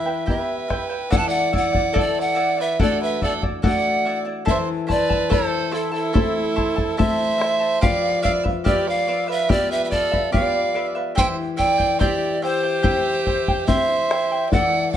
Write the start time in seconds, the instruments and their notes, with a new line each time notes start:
Already playing: nylon-string guitar E3, violin B4, pan flute E5
0.06 charango E4 B4 G5
0.26 nylon-string guitar B3 E4, charango E4 G4 B4 E5 G5, violin B4, pan flute E5, bombo low
0.30 nylon-string guitar G4
0.68 charango E4 B4 E5 G5, bombo rim, bombo low
0.89 charango E4 B4 G5
1.10 nylon-string guitar E3, charango E4 A4 D5 E5 F#5, violin D5, pan flute F#5, bombo low
1.17 violin F#5, pan flute A5
1.27 violin D5, pan flute F#5
1.52 charango E4 D5 E5 F#5, violin D5, bombo low
1.57 pan flute F#5
1.73 charango E4 D5 F#5, bombo low
1.93 charango E4 A4 D5 E5 F#5, bombo low
1.99 violin A4, pan flute D5
2.19 violin D5, pan flute F#5
2.35 charango E4 D5 E5 F#5
2.57 charango E4 D5 F#5, violin B4, pan flute E5
2.79 nylon-string guitar A3 D4 F#4, charango E4 A4 D5 E5 F#5, violin A4, pan flute D5, bombo low
3.03 violin B4, pan flute E5
3.22 charango E4 D5 E5 F#5, violin A4, pan flute D5, bombo low
3.42 charango E4 D5 F#5, bombo low
3.62 nylon-string guitar A3 D4, charango E4 A4 D5 E5 F#5, bombo low
3.66 nylon-string guitar F#4, violin D5, pan flute F#5
4.05 charango E4 D5 E5 F#5
4.25 charango E4 D5 F#5
4.45 nylon-string guitar E3, charango E4 A4 C5 E5 A5, pan flute E5, bombo low
4.50 violin C5
4.87 charango E4 C5 E5 A5, bombo low
4.91 violin B4, pan flute D5
5.09 charango E4 C5 A5, bombo low
5.29 charango E4 A4 C5 E5 A5, violin A4, pan flute C5, bombo low
5.71 charango E4 C5 E5 A5, violin E4, pan flute A4
5.92 charango E4 C5 A5, violin E4, pan flute A4
6.13 nylon-string guitar A3 C4 E4, charango E4 A4 C5 E5 A5, bombo low
6.55 charango E4 C5 E5 A5, bombo low
6.76 charango E4 C5 A5, bombo low
6.97 nylon-string guitar A3 C4 E4, charango E4 A4 C5 E5 A5, violin C5, pan flute E5, bombo low
7.38 charango E4 C5 E5 A5, bombo rim
7.60 charango E4 C5 A5
7.81 nylon-string guitar F3, charango F4 G4 B4 D5, violin D5, pan flute F5, bombo low
8.22 charango F4 B4 D5 E5, violin D5, pan flute F5, bombo low
8.44 charango F4 B4 E5, bombo low
8.64 charango F4 G4 B4 D5 E5, violin G4, pan flute D5, bombo low
8.87 violin D5, pan flute F5
9.07 charango F4 B4 D5 E5
9.28 charango F4 B4 E5, violin B4, pan flute E5
9.49 nylon-string guitar B3 F4 G4, charango F4 G4 B4 D5 E5, violin G4, pan flute D5, bombo low
9.71 violin B4, pan flute E5
9.84 violin B4, pan flute E5
9.91 charango F4 B4 D5 E5, violin A4, pan flute D5, bombo low
10.11 charango F4 B4 E5, bombo low
10.32 nylon-string guitar B3 F4 G4, charango F4 G4 B4 D5, violin D5, pan flute F5, bombo low
10.74 charango F4 B4 D5 E5
10.95 charango F4 B4 E5
11.15 nylon-string guitar E3, charango E4 G4 C5 E5 G5, violin C5, pan flute G5, bombo low
11.57 charango E4 C5 E5 G5, violin D5, pan flute G5, bombo low
11.78 charango E4 C5 G5, bombo low
11.99 charango E4 G4 C5 E5 G5, violin G4, pan flute D5, bombo low
12.41 charango E4 C5 E5 G5, violin G4, pan flute C5
12.63 charango E4 C5 G5
12.83 nylon-string guitar C4 E4 G4, charango E4 G4 C5 E5 G5, bombo low
13.26 charango E4 C5 E5 G5, bombo low
13.48 charango E4 C5 G5, bombo low
13.67 nylon-string guitar C4 E4 G4, charango E4 G4 C5 E5 G5, violin C5, pan flute E5, bombo low
14.11 charango E4 C5 E5 G5, bombo rim
14.31 charango E4 C5 G5
14.51 nylon-string guitar E3, charango E4 A4 D5 E5 F#5, violin D5, pan flute F#5, bombo low
14.92 pan flute F#5